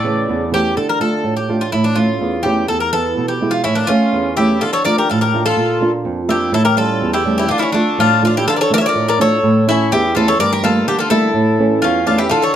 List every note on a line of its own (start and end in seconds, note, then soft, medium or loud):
0.00 0.27 A2 medium
0.00 0.49 A3 medium
0.00 0.49 D5 loud
0.04 0.43 C#3 medium
0.04 0.43 E3 soft
0.04 0.43 A3 soft
0.29 0.75 E2 medium
0.51 0.71 E3 medium
0.51 0.72 A3 soft
0.51 0.72 C#4 medium
0.51 0.77 G4 medium
0.77 1.23 D3 medium
0.77 0.88 A4 medium
0.89 1.01 A#4 medium
1.00 1.39 A3 soft
1.00 1.39 D4 soft
1.00 1.39 F4 soft
1.00 1.34 A4 medium
1.24 1.71 A2 medium
1.37 1.61 G4 medium
1.49 1.68 A3 soft
1.49 1.68 D4 soft
1.49 1.69 F4 medium
1.61 1.72 F4 medium
1.72 2.20 A2 medium
1.72 1.84 E4 medium
1.84 1.97 D4 medium
1.96 2.35 A3 soft
1.96 2.36 C#4 soft
1.96 2.46 F4 medium
1.96 2.36 E5 soft
2.21 2.68 E2 medium
2.43 2.64 A3 soft
2.43 2.64 C#4 soft
2.43 2.65 E4 medium
2.43 2.66 G4 medium
2.68 3.16 E2 medium
2.68 2.80 A4 medium
2.80 2.92 A#4 medium
2.92 3.31 E3 soft
2.92 3.32 B3 soft
2.92 3.32 E4 soft
2.92 3.27 A4 medium
3.17 3.64 B2 medium
3.28 3.51 G4 medium
3.41 3.60 G#3 soft
3.41 3.61 B3 soft
3.41 3.61 E4 medium
3.51 3.63 F4 medium
3.64 3.88 A2 medium
3.64 3.75 C#4 medium
3.64 3.76 E4 medium
3.75 3.88 A#3 medium
3.75 3.88 D4 medium
3.87 4.28 A3 soft
3.87 4.34 C#4 medium
3.87 4.28 C#4 soft
3.87 4.33 F4 medium
3.87 4.28 E5 soft
4.13 4.60 E2 medium
4.37 4.57 A3 soft
4.37 4.58 C#4 soft
4.37 4.60 E4 medium
4.37 4.58 E4 medium
4.37 4.62 G4 medium
4.61 5.09 D3 medium
4.61 4.72 F4 medium
4.61 4.73 A4 medium
4.73 4.84 A4 medium
4.73 4.85 C#5 loud
4.85 5.24 A3 soft
4.85 5.24 D4 soft
4.85 5.25 F4 soft
4.85 4.96 A#4 medium
4.85 4.98 D5 medium
4.98 5.09 G4 medium
4.98 5.10 A#4 medium
5.09 5.56 A2 medium
5.09 5.21 F4 medium
5.09 5.21 A4 medium
5.21 5.44 G4 medium
5.21 5.45 A#4 medium
5.34 5.53 A3 soft
5.34 5.53 D4 soft
5.34 5.54 F4 medium
5.46 5.91 F4 medium
5.46 5.91 A4 medium
5.57 6.04 A#2 medium
5.81 6.20 A#3 soft
5.81 6.21 D4 soft
5.81 6.21 F4 soft
6.05 6.52 F2 medium
6.29 6.49 A#3 soft
6.29 6.49 D4 soft
6.29 6.52 E4 medium
6.29 6.49 F4 medium
6.29 6.53 G4 medium
6.52 7.00 A2 medium
6.52 6.65 E4 medium
6.52 6.64 A4 medium
6.65 6.77 G4 medium
6.65 6.77 A#4 medium
6.76 7.16 G3 soft
6.76 7.16 A3 soft
6.76 7.16 C#4 soft
6.76 7.11 F4 medium
6.76 7.12 A4 loud
7.02 7.49 E2 medium
7.13 7.37 E4 medium
7.13 7.36 G4 medium
7.25 7.45 G3 soft
7.25 7.45 A3 soft
7.25 7.46 C#4 medium
7.38 7.50 E4 medium
7.38 7.49 G4 medium
7.48 7.97 D3 medium
7.48 7.59 D4 medium
7.48 7.57 F4 medium
7.58 7.63 D4 soft
7.58 7.72 E4 medium
7.58 7.62 F4 medium
7.63 7.74 C#4 medium
7.72 8.13 A3 soft
7.72 8.19 A3 medium
7.72 8.18 D4 medium
7.72 8.13 D4 soft
7.72 8.13 F4 soft
7.98 8.45 A2 medium
7.98 8.22 D4 medium
7.98 8.22 F4 medium
8.22 8.42 A3 soft
8.22 8.42 D4 medium
8.22 8.42 F4 medium
8.22 8.36 F4 medium
8.27 8.36 D4 medium
8.37 8.47 E4 medium
8.37 8.47 G4 medium
8.48 8.94 D3 medium
8.48 8.57 F4 medium
8.48 8.56 A4 loud
8.56 8.59 A#4 medium
8.56 8.59 D5 medium
8.61 8.71 A4 medium
8.61 8.71 C#5 medium
8.70 9.09 A3 soft
8.70 9.09 D4 soft
8.70 9.09 F4 medium
8.70 8.79 A#4 medium
8.70 8.78 D5 loud
8.78 8.86 C#5 medium
8.78 8.85 E5 medium
8.86 9.08 A#4 medium
8.86 9.06 D5 medium
8.95 9.41 A2 medium
9.08 9.19 A#4 medium
9.08 9.19 D5 medium
9.19 9.38 A3 medium
9.19 9.38 D4 soft
9.19 9.39 F4 medium
9.19 9.65 A4 medium
9.19 9.70 C#5 loud
9.43 9.90 A2 medium
9.67 10.05 A3 soft
9.67 10.05 C#4 soft
9.67 9.91 C#4 medium
9.67 10.06 E4 soft
9.67 9.90 E4 loud
9.92 10.38 E2 medium
9.92 10.14 E4 medium
9.92 10.16 G4 medium
10.15 10.35 A3 medium
10.15 10.35 C#4 soft
10.15 10.35 E4 medium
10.15 10.26 F4 medium
10.15 10.27 A4 medium
10.28 10.39 A4 medium
10.28 10.40 C#5 loud
10.39 10.86 G2 medium
10.39 10.51 A#4 medium
10.39 10.51 D5 loud
10.52 10.63 G4 medium
10.52 10.63 A#4 medium
10.63 11.01 G3 soft
10.63 11.02 A3 soft
10.63 11.02 A#3 medium
10.63 10.86 F4 medium
10.63 10.86 A4 medium
10.87 11.34 D3 medium
10.87 10.99 D4 medium
10.87 10.98 G4 medium
10.99 11.10 F4 medium
10.99 11.09 A4 medium
11.10 11.30 G3 soft
11.10 11.30 A3 soft
11.10 11.30 A#3 medium
11.10 11.79 E4 medium
11.10 11.85 A4 medium
11.34 11.81 A2 medium
11.59 11.98 E3 soft
11.59 11.98 A3 soft
11.59 11.98 C#4 medium
11.82 12.29 E2 medium
11.82 12.06 C#4 medium
11.82 12.05 F4 medium
12.06 12.26 E3 medium
12.06 12.26 A3 soft
12.06 12.27 C#4 medium
12.06 12.18 D4 medium
12.06 12.18 F4 medium
12.18 12.29 E4 medium
12.18 12.30 G4 medium
12.29 12.56 D3 medium
12.29 12.41 F4 medium
12.29 12.42 A4 loud
12.42 12.53 A4 medium
12.42 12.55 C#5 medium